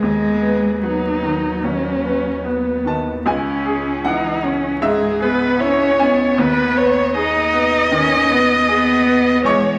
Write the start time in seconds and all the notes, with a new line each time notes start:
0.01 D#2 G#3 B3
0.42 B4
0.82 F#3 B3 D#4
1.22 D#3
1.63 D#2 C#4
2.04 B4
2.44 B3
2.85 D#3 A5
3.26 C#2 C#4 G#5
3.65 G#4
4.05 E3 D#4 F#5
4.43 C#4
4.82 G#2 G#3 G#4 E5
5.20 B3 G#4 B4
5.59 C#4 E4 C#5
5.98 B3 C#4 G#5
6.38 D#2 B4
6.76 B4 C#5
7.15 D#4 G#4 D#5
7.53 B3
7.91 D#3 C#4
8.30 B3 B4
8.68 B3 G#4
9.06 B3
9.44 E1 E2 G#3 C#5 C#6